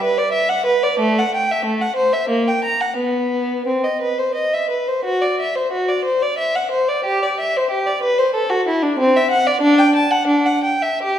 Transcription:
0.03 B4
0.18 D5
0.33 E5
0.49 F#5
0.66 B4
0.83 D5
0.99 A3
1.19 F#5
1.35 G5
1.52 E5
1.65 A3
1.81 F#5
1.96 C5
2.13 E5
2.29 A#3
2.48 G5
2.64 A#5
2.81 F#5
2.97 B3
3.67 C4
3.84 D#5
4.01 B4
4.19 C5
4.35 D#5
4.54 E5
4.70 B4
4.88 C5
5.05 F#4
5.22 D5
5.40 E5
5.55 C5
5.72 F#4
5.89 D5
6.05 C5
6.22 D5
6.38 E5
6.56 F#5
6.71 C5
6.88 D5
7.04 G4
7.23 D5
7.40 E5
7.57 C5
7.70 G4
7.87 D5
8.03 B4
8.19 C5
8.35 A4
8.50 F#4
8.68 E4
8.83 D4
8.99 C4
9.16 E5
9.31 F#5
9.47 D5
9.61 D4
9.79 G5
9.96 A5
10.11 F#5
10.27 D4
10.46 F#5
10.64 G5
10.82 E5
11.03 G4

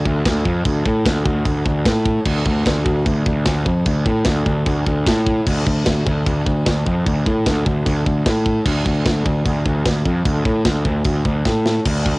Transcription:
0.05 D2, kick
0.25 D2, kick, snare, china
0.45 F2, kick
0.65 D2, kick, china
0.85 A2, kick
1.05 D2, kick, snare, china
1.25 D2, kick
1.45 D2, kick, china
1.66 D2, kick
1.85 A2, kick, snare, china
2.05 kick
2.25 D2, kick, china, crash
2.46 D2, kick
2.66 D2, kick, snare, china
2.85 D2, kick
3.06 D2, kick, china
3.26 D2, kick
3.45 D2, kick, snare, china
3.66 F2, kick
3.86 D2, kick, china
4.06 A2, kick
4.25 D2, kick, snare, china
4.46 D2, kick
4.66 D2, kick, china
4.87 D2, kick
5.07 A2, kick, snare, china
5.27 kick
5.47 D2, kick, crash, china
5.67 D2, kick
5.86 D2, kick, snare, china
6.07 D2, kick
6.26 D2, kick, china
6.46 D2, kick
6.66 D2, kick, snare, china
6.87 F2, kick
7.06 D2, kick, china
7.26 A2, kick
7.46 D2, kick, snare, china
7.66 D2, kick
7.86 D2, kick, china
8.06 D2, kick
8.26 A2, kick, snare, china
8.46 kick
8.66 D2, kick, china, crash
8.86 D2, kick
9.06 D2, kick, snare, china
9.25 D2, kick
9.45 D2, kick, china
9.66 D2, kick
9.86 D2, kick, snare, china
10.05 F2, kick
10.25 D2, kick, china
10.45 A2, kick
10.65 D2, kick, snare, china
10.85 D2, kick
11.04 D2, kick, china
11.25 D2, kick
11.45 A2, kick, snare
11.66 snare
11.85 D2, kick, crash, china
12.06 kick

